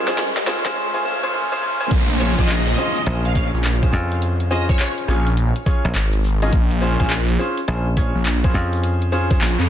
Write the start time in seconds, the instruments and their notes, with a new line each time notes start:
Already playing: ambient pad F4 A#4 D#5 G#5, riser
0.07 grand piano C#4 F4 G#4 C5, snare
0.18 snare, closed hi-hat
0.37 snare, closed hi-hat
0.47 grand piano C#4 F4 G#4 C5, snare
0.65 grand piano C#4 F4 G#4 C5, kick, snare
0.76 grand piano C#4 F4 G#4 C5
0.94 grand piano C#4 F4 G#4 C5
1.05 grand piano C#4 F4 G#4 C5
1.23 grand piano C#4 F4 G#4 C5
1.33 grand piano C#4 F4 G#4 C5
1.52 grand piano C#4 F4 G#4 C5
1.62 grand piano C#4 F4 G#4 C5
1.80 grand piano C#4 F4 G#4 C5
1.91 detuned saw bass A#1, kick, closed hi-hat, crash, downlifter, shaker
2.10 closed hi-hat
2.19 grand piano C#4 F4 G#4 C5, analog synth lead C#5, shaker
2.38 detuned saw bass A#1, grand piano C#4 F4 G#4 C5, analog synth lead D#5, kick, closed hi-hat, shaker
2.49 clap, closed hi-hat, shaker
2.67 closed hi-hat
2.78 grand piano C#4 F4 G#4 C5, shaker
2.96 closed hi-hat, shaker
3.06 slap bass A#1, grand piano C#4 F4 G#4 C5, closed hi-hat, shaker
3.25 analog synth lead F5, closed hi-hat
3.35 grand piano C#4 F4 G#4 C#5, analog synth lead F5, kick, cross-stick, shaker
3.54 detuned saw bass A#1, shaker
3.64 clap, closed hi-hat, shaker
3.83 grand piano C#4 F4 G#4 C5, kick, closed hi-hat
3.93 slap bass F2, shaker
4.12 closed hi-hat, shaker
4.22 closed hi-hat, shaker
4.40 closed hi-hat
4.51 grand piano C#4 F4 G#4 C5, analog synth lead D#5, shaker
4.69 grand piano C#4 F4 G#4 C5, analog synth lead C#5, kick, closed hi-hat, shaker
4.74 closed hi-hat
4.79 analog synth lead C#5, clap, closed hi-hat, shaker
4.89 closed hi-hat
4.98 closed hi-hat
5.08 detuned saw bass A#1, grand piano C#4 F4 G#4 C#5, cross-stick, shaker
5.27 closed hi-hat, shaker
5.37 closed hi-hat, shaker
5.56 closed hi-hat
5.66 grand piano C#4 F4 G#4 C#5, kick, shaker
5.85 slap bass A#1, shaker
5.95 detuned saw bass G#1, clap, closed hi-hat, shaker
6.13 closed hi-hat
6.24 shaker
6.42 grand piano C#4 F4 G#4 D#5, closed hi-hat, shaker
6.52 detuned saw bass A#1, kick, closed hi-hat, shaker
6.71 closed hi-hat
6.81 grand piano C#4 F4 G#4 C5, shaker
7.00 detuned saw bass A#1, grand piano C#4 F4 G#4 C5, kick, closed hi-hat, shaker
7.10 clap, closed hi-hat, shaker
7.28 closed hi-hat
7.39 grand piano C#4 F4 G#4 C5, shaker
7.57 closed hi-hat, shaker
7.68 slap bass A#1, grand piano C#4 F4 G#4 C5, closed hi-hat, shaker
7.97 grand piano C#4 F4 G#4 C#5, kick, cross-stick, closed hi-hat, shaker
8.15 detuned saw bass A#1, shaker
8.26 clap, closed hi-hat, shaker
8.44 grand piano C#4 F4 G#4 C5, kick, closed hi-hat
8.54 slap bass F2, shaker
8.73 closed hi-hat, shaker
8.83 closed hi-hat, shaker
9.02 closed hi-hat
9.12 grand piano C#4 F4 G#4 C5, shaker
9.31 grand piano C#4 F4 G#4 C5, kick, closed hi-hat, shaker
9.41 detuned saw bass A#1, clap, closed hi-hat, shaker
9.59 detuned saw bass F2, clap, closed hi-hat